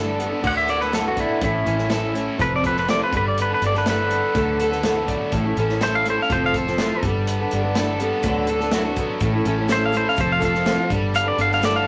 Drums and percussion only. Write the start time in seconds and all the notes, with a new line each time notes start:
0.20 closed hi-hat
0.44 kick, crash
0.68 closed hi-hat
0.81 snare
0.93 snare, closed hi-hat
1.17 kick, closed hi-hat
1.41 kick, closed hi-hat
1.66 closed hi-hat
1.79 snare
1.90 snare, closed hi-hat
2.15 closed hi-hat
2.39 kick, closed hi-hat
2.64 kick, closed hi-hat
2.76 snare
2.89 snare, closed hi-hat
3.13 kick, closed hi-hat
3.38 closed hi-hat
3.62 closed hi-hat
3.74 snare
3.86 snare, closed hi-hat
4.11 closed hi-hat
4.35 kick, closed hi-hat
4.60 closed hi-hat
4.72 snare
4.83 snare, closed hi-hat
5.08 kick, closed hi-hat
5.32 kick, closed hi-hat
5.57 closed hi-hat
5.69 snare
5.81 snare, closed hi-hat
6.06 closed hi-hat
6.30 kick, closed hi-hat
6.54 kick, closed hi-hat
6.67 snare
6.78 snare, closed hi-hat
7.03 kick, closed hi-hat
7.27 closed hi-hat
7.51 closed hi-hat
7.75 snare, closed hi-hat
8.00 closed hi-hat
8.23 kick, closed hi-hat, shaker
8.47 closed hi-hat, shaker
8.60 snare
8.71 snare, closed hi-hat, shaker
8.96 kick, closed hi-hat, shaker
9.20 kick, closed hi-hat, shaker
9.45 closed hi-hat
9.68 snare, closed hi-hat, shaker
9.92 closed hi-hat, shaker
10.16 kick, closed hi-hat, shaker
10.41 kick, closed hi-hat, shaker
10.54 snare
10.66 snare, closed hi-hat, shaker
10.90 kick, closed hi-hat, shaker
11.14 closed hi-hat, shaker
11.38 closed hi-hat
11.52 snare
11.62 snare, closed hi-hat, shaker